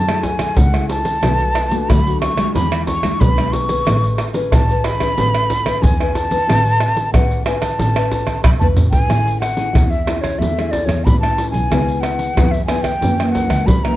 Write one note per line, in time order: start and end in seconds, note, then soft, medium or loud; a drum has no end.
0.00 0.48 F#2 medium
0.00 0.55 F#3 medium
0.00 0.25 A5 medium
0.09 0.69 A3 medium
0.09 0.70 E4 medium
0.09 0.70 G#4 medium
0.09 pandeiro soft
0.09 tamborim medium
0.09 shaker soft
0.23 0.59 G#5 medium
0.23 pandeiro medium
0.23 shaker medium
0.23 surdo soft
0.39 pandeiro medium
0.39 tamborim medium
0.39 shaker medium
0.39 surdo soft
0.57 1.14 C#2 medium
0.57 1.20 C#3 medium
0.57 0.89 F#5 medium
0.57 pandeiro medium
0.57 shaker medium
0.57 surdo loud
0.74 1.19 A3 medium
0.74 1.19 E4 medium
0.74 1.19 G#4 medium
0.74 pandeiro soft
0.74 tamborim medium
0.74 shaker soft
0.89 1.91 A5 loud
0.89 pandeiro medium
1.05 pandeiro medium
1.05 shaker medium
1.05 surdo soft
1.23 1.38 B1 loud
1.23 1.86 B2 medium
1.23 1.68 A3 medium
1.23 1.68 D4 soft
1.23 1.68 F#4 medium
1.23 pandeiro medium
1.23 tamborim medium
1.23 shaker medium
1.23 surdo medium
1.40 1.82 B1 medium
1.40 pandeiro soft
1.40 shaker soft
1.55 pandeiro medium
1.55 tamborim medium
1.55 shaker medium
1.71 2.00 A3 medium
1.71 2.00 D4 medium
1.71 2.00 F#4 medium
1.71 pandeiro medium
1.71 shaker medium
1.89 2.54 D2 medium
1.89 2.52 F#3 soft
1.89 2.20 B5 medium
1.89 pandeiro medium
1.89 tamborim medium
1.89 shaker medium
1.89 surdo loud
2.07 2.34 A3 medium
2.07 2.34 D4 medium
2.07 2.34 F#4 medium
2.07 pandeiro soft
2.07 shaker soft
2.21 2.52 C#6 loud
2.21 pandeiro medium
2.21 tamborim medium
2.37 2.98 G#3 medium
2.37 2.99 D4 medium
2.37 2.99 F4 medium
2.37 pandeiro medium
2.37 tamborim medium
2.37 shaker medium
2.37 surdo soft
2.55 3.11 E2 medium
2.55 3.18 E3 medium
2.55 2.85 B5 medium
2.55 pandeiro medium
2.55 shaker medium
2.55 surdo medium
2.72 pandeiro soft
2.72 tamborim medium
2.72 shaker soft
2.87 3.22 C#6 medium
2.87 pandeiro medium
2.87 shaker medium
2.87 surdo soft
3.03 3.31 G#3 medium
3.03 3.32 D4 medium
3.03 3.32 F4 medium
3.03 pandeiro medium
3.03 tamborim medium
3.03 shaker medium
3.03 surdo soft
3.20 3.77 B1 loud
3.20 3.83 B2 soft
3.20 3.54 B5 loud
3.20 pandeiro medium
3.20 shaker medium
3.20 surdo loud
3.38 3.65 G#3 medium
3.38 3.66 D4 medium
3.38 3.66 F4 medium
3.38 pandeiro soft
3.38 tamborim medium
3.38 shaker soft
3.52 4.24 C#6 loud
3.52 pandeiro medium
3.52 shaker medium
3.52 surdo soft
3.69 4.30 C#4 medium
3.69 4.30 G#4 medium
3.69 4.30 B4 medium
3.69 pandeiro medium
3.69 shaker medium
3.69 surdo soft
3.87 4.01 A1 loud
3.87 4.49 A3 soft
3.87 pandeiro medium
3.87 tamborim medium
3.87 shaker medium
3.87 surdo medium
4.03 4.45 A1 medium
4.03 pandeiro soft
4.03 shaker soft
4.18 pandeiro medium
4.18 tamborim medium
4.18 shaker medium
4.34 4.62 C#4 medium
4.34 4.63 G#4 medium
4.34 4.63 B4 medium
4.34 pandeiro medium
4.34 shaker medium
4.51 5.07 A1 medium
4.51 5.14 E3 soft
4.51 4.86 A5 medium
4.51 pandeiro medium
4.51 tamborim medium
4.51 shaker medium
4.51 surdo loud
4.69 4.96 C#4 medium
4.69 4.97 G#4 medium
4.69 4.97 B4 medium
4.69 pandeiro soft
4.69 shaker soft
4.84 5.84 B5 loud
4.84 pandeiro medium
4.84 tamborim medium
5.00 5.11 C#4 medium
5.00 5.12 G#4 medium
5.00 5.12 B4 medium
5.00 pandeiro medium
5.00 tamborim medium
5.00 shaker medium
5.00 surdo soft
5.17 5.73 A1 medium
5.17 5.80 A3 medium
5.17 5.48 C#4 medium
5.17 5.48 G#4 medium
5.17 5.48 B4 medium
5.17 pandeiro medium
5.17 shaker medium
5.17 surdo medium
5.35 pandeiro soft
5.35 tamborim medium
5.35 shaker soft
5.50 pandeiro medium
5.50 surdo soft
5.66 5.93 C#4 medium
5.66 5.94 G#4 medium
5.66 5.94 B4 medium
5.66 pandeiro medium
5.66 tamborim medium
5.66 shaker medium
5.66 surdo soft
5.82 6.38 E2 loud
5.82 6.45 E3 medium
5.82 6.16 G#5 medium
5.82 pandeiro medium
5.82 shaker medium
5.82 surdo loud
6.00 6.27 C#4 medium
6.00 6.27 G#4 medium
6.00 6.27 B4 medium
6.00 pandeiro soft
6.00 tamborim medium
6.00 shaker soft
6.14 7.13 A5 medium
6.14 pandeiro medium
6.14 shaker medium
6.14 surdo soft
6.31 6.42 C#4 medium
6.31 6.43 G#4 medium
6.31 6.43 B4 medium
6.31 pandeiro medium
6.31 shaker medium
6.31 surdo soft
6.48 6.62 A1 loud
6.48 7.10 A3 medium
6.48 7.08 C#4 soft
6.48 7.09 B4 medium
6.48 pandeiro medium
6.48 tamborim medium
6.48 shaker medium
6.48 surdo medium
6.65 7.06 A1 medium
6.65 pandeiro soft
6.65 shaker soft
6.80 pandeiro medium
6.80 tamborim medium
6.80 shaker medium
6.97 pandeiro medium
6.97 shaker medium
7.13 7.69 A1 medium
7.13 7.76 E3 medium
7.13 7.41 C#4 soft
7.13 7.41 G#4 medium
7.13 7.41 B4 medium
7.13 7.44 F#5 medium
7.13 pandeiro medium
7.13 tamborim medium
7.13 shaker medium
7.13 surdo loud
7.31 pandeiro soft
7.31 shaker soft
7.45 7.76 C#4 soft
7.45 7.77 G#4 medium
7.45 7.77 B4 medium
7.45 7.62 G#5 medium
7.45 pandeiro medium
7.45 tamborim medium
7.45 shaker medium
7.61 8.43 A5 medium
7.61 pandeiro medium
7.61 tamborim medium
7.61 shaker medium
7.61 surdo soft
7.79 8.34 A1 medium
7.79 8.41 A3 medium
7.79 pandeiro medium
7.79 shaker medium
7.79 surdo medium
7.95 8.55 C#4 medium
7.95 8.55 B4 medium
7.95 pandeiro soft
7.95 tamborim medium
7.95 shaker soft
8.12 pandeiro medium
8.12 shaker medium
8.12 surdo soft
8.27 pandeiro medium
8.27 tamborim medium
8.27 shaker medium
8.27 surdo soft
8.43 8.73 B1 medium
8.43 9.06 E3 medium
8.43 8.49 B5 medium
8.43 pandeiro medium
8.43 tamborim medium
8.43 shaker medium
8.43 surdo loud
8.60 9.04 C#4 medium
8.60 9.05 B4 medium
8.60 8.67 A5 medium
8.60 surdo loud
8.60 pandeiro soft
8.60 shaker soft
8.75 9.05 A1 medium
8.75 surdo loud
8.75 pandeiro medium
8.75 shaker medium
8.91 9.37 G#5 loud
8.91 pandeiro medium
8.91 shaker medium
8.91 surdo loud
9.09 9.64 A1 medium
9.09 9.71 A3 soft
9.09 9.40 C#4 soft
9.09 9.40 E4 medium
9.09 9.40 G#4 soft
9.09 pandeiro medium
9.09 tamborim medium
9.09 shaker medium
9.09 surdo medium
9.27 pandeiro soft
9.27 shaker soft
9.40 9.91 F#5 loud
9.40 pandeiro medium
9.40 tamborim medium
9.40 shaker medium
9.56 9.69 C#4 medium
9.56 9.69 E4 medium
9.56 9.69 G#4 medium
9.56 pandeiro medium
9.56 shaker medium
9.74 10.30 E2 medium
9.74 10.37 E3 soft
9.74 9.94 C#4 medium
9.74 9.94 E4 medium
9.74 9.94 G#4 medium
9.74 pandeiro medium
9.74 tamborim medium
9.74 shaker medium
9.74 surdo loud
9.90 10.23 E5 medium
9.90 pandeiro soft
9.90 shaker soft
10.07 10.51 C#4 soft
10.07 10.51 E4 medium
10.07 10.51 G#4 medium
10.07 pandeiro medium
10.07 tamborim medium
10.21 10.40 C#5 medium
10.21 pandeiro medium
10.21 tamborim medium
10.21 shaker medium
10.21 surdo soft
10.39 10.81 E2 medium
10.39 11.03 A3 medium
10.39 10.73 E5 medium
10.39 pandeiro medium
10.39 shaker medium
10.39 surdo medium
10.58 11.17 C#4 medium
10.58 11.18 E4 medium
10.58 11.18 G#4 medium
10.58 pandeiro soft
10.58 tamborim medium
10.58 shaker soft
10.71 10.87 D5 medium
10.71 pandeiro medium
10.71 surdo soft
10.85 11.01 E2 medium
10.85 11.06 C#5 medium
10.85 pandeiro medium
10.85 tamborim medium
10.85 shaker medium
10.85 surdo soft
11.04 11.52 A2 medium
11.04 11.68 E3 soft
11.04 11.19 B5 medium
11.04 pandeiro medium
11.04 shaker medium
11.04 surdo loud
11.20 11.66 C#4 medium
11.20 11.66 E4 medium
11.20 11.50 A5 medium
11.20 pandeiro soft
11.20 tamborim medium
11.20 shaker soft
11.38 pandeiro medium
11.38 shaker medium
11.50 11.67 B1 medium
11.50 12.02 G#5 medium
11.50 pandeiro medium
11.50 shaker medium
11.50 surdo soft
11.71 12.26 C#2 loud
11.71 12.33 C#3 medium
11.71 12.31 B3 soft
11.71 12.32 E4 medium
11.71 12.32 G#4 medium
11.71 pandeiro medium
11.71 tamborim medium
11.71 shaker medium
11.71 surdo medium
11.88 pandeiro soft
11.88 shaker soft
12.01 12.53 F#5 medium
12.01 pandeiro medium
12.01 tamborim medium
12.19 pandeiro medium
12.19 shaker medium
12.36 12.91 F2 medium
12.36 12.99 G#2 soft
12.36 12.56 B3 soft
12.36 12.56 E4 soft
12.36 12.56 G#4 medium
12.36 pandeiro medium
12.36 tamborim medium
12.36 shaker medium
12.36 surdo medium
12.51 12.65 E5 medium
12.51 pandeiro soft
12.51 shaker soft
12.66 12.90 B3 medium
12.66 12.90 E4 soft
12.66 12.90 G#4 medium
12.66 12.83 G#5 medium
12.66 pandeiro medium
12.66 tamborim medium
12.81 13.33 G5 medium
12.81 pandeiro medium
12.81 tamborim medium
12.81 shaker medium
12.81 surdo soft
13.02 13.43 F#2 medium
13.02 13.64 F#2 medium
13.02 13.12 E3 medium
13.02 13.12 A#3 soft
13.02 13.12 C#4 medium
13.02 pandeiro medium
13.02 shaker medium
13.02 surdo medium
13.19 13.79 E3 medium
13.19 13.79 A#3 medium
13.19 13.79 C#4 medium
13.19 pandeiro soft
13.19 tamborim medium
13.19 shaker soft
13.32 13.68 F#5 medium
13.32 pandeiro medium
13.32 shaker medium
13.32 surdo soft
13.49 13.63 C#2 medium
13.49 pandeiro medium
13.49 tamborim medium
13.49 shaker medium
13.49 surdo soft
13.66 13.96 C#3 soft
13.66 13.96 F#3 medium
13.66 13.85 B5 medium
13.66 pandeiro medium
13.66 shaker medium
13.66 surdo loud
13.83 13.95 E3 medium
13.83 13.95 A#3 medium
13.83 13.95 C#4 medium
13.83 13.96 A#5 medium
13.83 pandeiro soft
13.83 tamborim medium
13.83 shaker soft